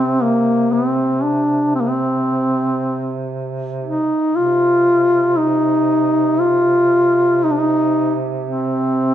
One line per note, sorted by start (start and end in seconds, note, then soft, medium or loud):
0.00 4.17 C3 soft
0.00 0.24 C4 medium
0.22 0.74 A#3 medium
0.73 1.25 C4 medium
1.24 1.73 D4 medium
1.75 1.81 C4 medium
1.80 1.90 A#3 medium
1.88 3.29 C4 medium
3.84 4.37 D#4 medium
4.34 9.14 C3 soft
4.34 5.39 F4 medium
5.38 6.41 D#4 medium
6.39 7.45 F4 medium
7.43 7.52 D#4 medium
7.51 7.60 D4 medium
7.58 8.21 D#4 medium
8.47 9.14 C4 medium